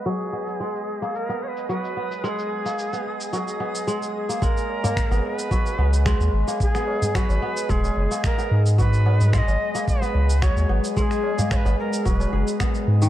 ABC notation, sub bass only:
X:1
M:4/4
L:1/16
Q:"Swing 16ths" 1/4=110
K:G#m
V:1 name="Sub bass" clef=bass
z16 | z16 | z4 z G,,, z4 C,,3 D,, G,,, z | z4 z G,,, z2 D,,, z F,,, z3 G,,2- |
G,,4- G,, G,,, z4 C,,3 D,, G,,, z | z4 z G,,, z2 D,,, z F,,, z3 G,,2 |]